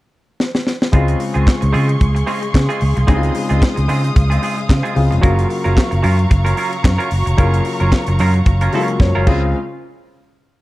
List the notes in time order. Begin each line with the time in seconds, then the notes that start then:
0.40 snare
0.55 snare
0.67 snare
0.82 snare
0.92 C#2 C#3 G#3 C4 F4 G#4 F5 C6 C#6, kick, closed hi-hat
1.08 closed hi-hat
1.20 muted clean electric guitar stroke, open hi-hat
1.34 C#2 G#3 C4 F4 G#4, closed hi-hat
1.47 kick, snare, clap
1.61 C#2, muted clean electric guitar stroke, closed hi-hat
1.73 C#3 G#3 C4 F4 G#4, open hi-hat
1.88 muted clean electric guitar stroke, closed hi-hat
2.01 C#2, kick, closed hi-hat
2.15 muted clean electric guitar stroke, closed hi-hat
2.27 G#3 C4 F4 G#4, open hi-hat
2.42 muted clean electric guitar stroke, closed hi-hat
2.54 C#3, muted clean electric guitar stroke, kick, snare, clap
2.69 G#3 C4 F4 G#4, closed hi-hat
2.81 C#2, muted clean electric guitar stroke, open hi-hat
2.97 C2, muted clean electric guitar stroke, closed hi-hat
3.07 C#2 C#3 G#3 C4 D#4 F4 G#4 D#6, kick, closed hi-hat
3.16 F4
3.23 closed hi-hat
3.35 muted clean electric guitar stroke, open hi-hat
3.49 C#2 G#3 C4 F4 G#4, closed hi-hat
3.62 kick, snare, clap
3.76 C#2, muted clean electric guitar stroke, closed hi-hat
3.88 C#3 G#3 C4 F4 G#4, open hi-hat
4.03 muted clean electric guitar stroke, closed hi-hat
4.15 C#2, muted clean electric guitar stroke, kick, closed hi-hat
4.30 G#3 C4 F4 G#4, closed hi-hat
4.42 G#3 C4 F4 G#4, open hi-hat
4.57 muted clean electric guitar stroke, closed hi-hat
4.69 C#3, muted clean electric guitar stroke, kick, snare, clap
4.83 G#3 C4 F4 G#4, closed hi-hat
4.95 C#2 C#3 G#3 C4 F4, muted clean electric guitar stroke, open hi-hat
5.11 F1, muted clean electric guitar stroke, closed hi-hat
5.21 F#1 C#3 F#3 A#3 C#4 F4 A#4 A#5 C#6, kick, closed hi-hat
5.39 closed hi-hat
5.49 muted clean electric guitar stroke, open hi-hat
5.64 F#1 F#3 C#4 F4 A#4, closed hi-hat
5.77 kick, snare, clap
5.91 F#1, muted clean electric guitar stroke, closed hi-hat
6.03 F#2 F#3 C#4 F4 A#4, open hi-hat
6.18 muted clean electric guitar stroke, closed hi-hat
6.30 F#1, muted clean electric guitar stroke, kick, closed hi-hat
6.45 F#3 C#4 F4 A#4, closed hi-hat
6.57 F#3 C#4 F4 A#4, open hi-hat
6.71 muted clean electric guitar stroke, closed hi-hat
6.83 F#2, muted clean electric guitar stroke, kick, snare, clap
6.98 F#3 C#4 F4 A#4, closed hi-hat
7.11 F#1, muted clean electric guitar stroke, open hi-hat
7.26 F1, muted clean electric guitar stroke, closed hi-hat
7.37 F#1 C#3 F#3 A#3 C#4 F4 A#4, kick, closed hi-hat
7.54 closed hi-hat
7.65 muted clean electric guitar stroke, open hi-hat
7.80 F#1 F#3 C#4 F4 A#4, closed hi-hat
7.92 kick, snare, clap
8.07 F#1, muted clean electric guitar stroke, closed hi-hat
8.19 F#2 F#3 C#4 F4 A#4, open hi-hat
8.34 muted clean electric guitar stroke, closed hi-hat
8.46 F#1, muted clean electric guitar stroke, kick, closed hi-hat
8.61 F#3 C#4 F4 A#4, closed hi-hat
8.72 C#3 F#3 G#3 C#4 F4 A#4, open hi-hat
8.80 A#3
8.88 muted clean electric guitar stroke, closed hi-hat
9.00 F#2 C#5, muted clean electric guitar stroke, kick, snare
9.15 F#1 F#3 C#4 F4 A#4
9.26 C#2 C#3 G#3 C4 C#4 F4 G#4 C5 F5, kick, crash